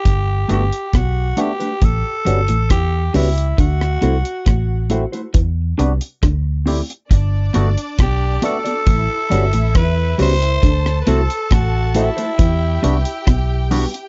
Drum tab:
HH |x-xxx-xxx-xxx-ox|x-xxx-xxx-xxx-ox|x-xxx-xxx-xxx-ox|x-xxx-xxx-xxx-ox|
SD |----r-------r---|-r--r-------r---|----r-------r---|-r--r-------r---|
BD |o---o---o---o---|o---o---o---o---|o---o---o---o---|o---o---o---o---|